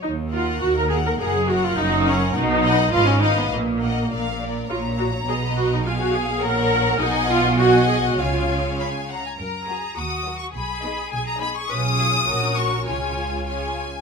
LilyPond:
<<
  \new Staff \with { instrumentName = "Violin section" } { \time 2/4 \key ees \minor \tempo 4 = 103 << { r8 ges''4 ges''8 | ges''8 ges''4 ges''8 | r8 fis''8 f''8 f''8 | r8 ges''8 r4 |
\key fis \major ais''2 | aes''4 fis''4 | gis''4 gis''4 | gis''4 gis''8 fis''16 gis''16 |
ais''4 \tuplet 3/2 { dis'''4 cis'''8 } | b''4 gis''16 ais''16 b''16 cis'''16 | dis'''4. cis'''8 | gis''4 gis''4 | } \\ { r2 | r2 | r2 | r4 f''8 d''8 |
r2 | r2 | r2 | r4 b''8 ais''8 |
r2 | r2 | r2 | r2 | } >> }
  \new Staff \with { instrumentName = "Violin section" } { \time 2/4 \key ees \minor r8 bes'4 bes'8 | bes'8 bes'4 bes'8 | r8 <b' dis''>8 <ces'' ees''>8 <ces'' ees''>8 | r8 <bes' ees''>8 <bes' d''>8 <bes' d''>8 |
\key fis \major cis''4 <b' dis''>4 | <aes' f''>4 <cis'' fis''>4 | <dis'' fis''>4 <dis'' fis''>4 | <cis'' eis''>4. r8 |
r8 <fis' ais'>8 r8 <fis' ais'>8 | r8 <gis' dis''>8 r8 <gis' dis''>8 | <gis' cis''>4 <ais' cis''>4 | <gis' cis''>4 <gis' cis''>8 r8 | }
  \new Staff \with { instrumentName = "Viola section" } { \time 2/4 \key ees \minor ees'8 f'8 ges'16 bes'16 aes'16 bes'16 | aes'8 ges'16 f'16 ees'8 des'8 | dis'4 f'16 des'16 ees'16 ces'16 | bes4. r8 |
\key fis \major eis'8 fis'8 gis'8 fis'16 dis'16 | f'16 fis'16 aes'8 ais'4 | dis'8 eis'8 fis'8 gis'16 fis'16 | eis'4 r4 |
r8 <fis fis'>8 r8 <fis fis'>8 | r8 <b dis'>8 r8 <b dis'>8 | <cis' eis'>4 <cis' fis'>4 | <cis' eis'>4 <cis' eis'>8 r8 | }
  \new Staff \with { instrumentName = "Cello section" } { \clef bass \time 2/4 \key ees \minor ees,4 ees,4 | ges,4 ges,4 | b,4 aes,4 | bes,4 bes,4 |
\key fis \major ais,4 b,4~ | b,4 ais,4 | b,2 | cis4. r8 |
ais'8 gis'8 fis'4 | gis'2 | b'8 gis'8 fis'4 | eis'4. r8 | }
  \new Staff \with { instrumentName = "Double bass section" } { \clef bass \time 2/4 \key ees \minor ees,4 ees,4 | ges,,4 ges,,4 | b,,4 aes,,4 | bes,,4 bes,,4 |
\key fis \major ais,,4 b,,4~ | b,,4 ais,,4 | b,,2 | cis,4. r8 |
fis,4 dis,4 | b,,4 b,,4 | b,,4 ais,,4 | cis,4. r8 | }
>>